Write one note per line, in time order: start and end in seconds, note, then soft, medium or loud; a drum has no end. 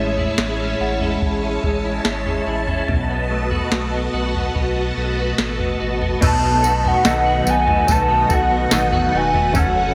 0.00 0.28 A1 medium
0.00 1.22 A2 medium
0.00 0.37 G#3 medium
0.00 2.86 G#3 medium
0.00 0.58 C#4 medium
0.00 0.18 E4 medium
0.00 2.24 C#5 medium
0.00 2.86 C#5 medium
0.00 2.85 E5 medium
0.00 6.19 A5 medium
0.18 0.79 E4 medium
0.18 floor tom medium
0.38 0.75 A1 medium
0.38 1.63 G#3 soft
0.38 snare loud
0.59 1.00 C#4 medium
0.80 1.17 A1 loud
0.80 1.83 E4 medium
0.80 3.07 F#5 medium
1.01 1.41 C#4 medium
1.01 floor tom medium
1.06 3.30 B5 soft
1.22 1.58 A1 medium
1.22 kick medium
1.42 2.25 C#4 medium
1.63 2.00 A1 medium
1.63 2.04 G#3 medium
1.63 kick medium
1.84 2.46 E4 medium
2.05 2.42 G#1 medium
2.05 2.97 G#3 medium
2.05 snare loud
2.26 2.67 C#4 medium
2.26 floor tom medium
2.46 2.83 A1 medium
2.46 2.97 E4 medium
2.68 2.97 C#4 soft
2.68 floor tom medium
2.88 3.62 B1 medium
2.88 4.54 B2 medium
2.88 6.19 F#4 medium
2.88 6.19 B4 medium
2.88 6.19 D#5 medium
2.88 kick medium
2.88 floor tom medium
3.10 3.92 B3 medium
3.30 3.72 A3 medium
3.51 4.13 F#4 medium
3.51 floor tom medium
3.72 4.09 B1 medium
3.72 4.96 A3 medium
3.72 snare loud
3.93 4.33 B3 soft
4.13 4.50 B1 medium
4.13 5.18 F#4 medium
4.34 4.75 B3 soft
4.34 floor tom medium
4.55 4.92 B1 loud
4.55 6.21 B2 medium
4.55 kick medium
4.76 5.59 B3 medium
4.97 5.34 B1 medium
4.97 5.38 A3 medium
5.18 5.79 F#4 medium
5.38 5.75 A1 medium
5.38 6.46 A3 medium
5.38 snare loud
5.59 6.01 B3 medium
5.59 floor tom medium
5.80 6.17 A1 medium
5.80 6.63 F#4 medium
6.01 6.42 B3 soft
6.01 floor tom medium
6.21 6.95 B1 loud
6.21 6.63 B2 medium
6.21 7.88 B2 medium
6.21 6.64 F#3 medium
6.21 6.64 A3 medium
6.21 6.63 D#4 medium
6.21 9.52 F#4 medium
6.21 6.61 A4 medium
6.21 9.52 B4 medium
6.21 9.52 D#5 medium
6.21 9.94 F#5 medium
6.21 kick loud
6.21 floor tom loud
6.21 crash loud
6.21 tambourine medium
6.26 6.89 A5 loud
6.43 6.83 B3 medium
6.62 7.05 D#4 medium
6.62 7.25 F#4 medium
6.62 7.04 A4 medium
6.62 tambourine medium
6.66 7.04 A3 soft
6.84 7.46 B3 medium
6.84 7.52 F#5 loud
6.84 floor tom medium
7.04 7.42 B1 loud
7.04 7.46 B2 medium
7.04 8.70 D#3 medium
7.04 7.47 F#3 medium
7.04 7.47 A3 medium
7.04 7.47 D#4 loud
7.04 7.44 A4 loud
7.04 9.31 D#5 medium
7.04 snare loud
7.04 tambourine medium
7.25 8.30 F#4 medium
7.45 7.83 B1 loud
7.45 8.08 B3 medium
7.45 7.89 D#4 medium
7.45 7.88 A4 medium
7.45 tambourine medium
7.50 7.87 A3 soft
7.50 7.93 G#5 loud
7.67 9.34 A3 medium
7.67 floor tom medium
7.87 8.25 B1 loud
7.87 9.55 B2 medium
7.87 8.29 F#3 medium
7.87 8.30 A3 medium
7.87 8.30 D#4 medium
7.87 kick medium
7.87 tambourine medium
7.91 8.27 A4 medium
7.91 8.35 A5 loud
8.09 8.50 B3 medium
8.29 8.67 B1 loud
8.29 8.72 D#4 medium
8.29 8.92 F#4 medium
8.29 8.71 A4 medium
8.29 kick medium
8.29 tambourine medium
8.33 8.71 A3 soft
8.33 9.18 F#5 loud
8.51 9.12 B3 medium
8.71 9.08 A1 loud
8.71 9.13 B2 medium
8.71 9.64 D#3 medium
8.71 9.13 F#3 medium
8.71 9.14 A3 medium
8.71 9.13 D#4 medium
8.71 9.11 A4 medium
8.71 snare loud
8.71 tambourine loud
8.92 9.94 F#4 medium
8.92 floor tom medium
9.12 9.56 E1 loud
9.12 9.63 B3 medium
9.12 9.55 D#4 medium
9.12 9.54 A4 medium
9.17 9.54 A3 soft
9.17 9.57 G#5 medium
9.34 9.94 A3 medium
9.34 floor tom medium
9.53 9.94 F#1 loud
9.53 9.94 F#2 medium
9.53 9.94 C#3 medium
9.53 9.94 F#3 medium
9.53 9.94 A3 medium
9.53 9.94 C#4 loud
9.53 9.94 F#4 medium
9.53 9.94 A4 medium
9.53 9.94 C#5 medium
9.53 kick loud
9.53 floor tom loud
9.53 tambourine medium
9.59 9.94 F#5 loud
9.76 9.94 C#4 medium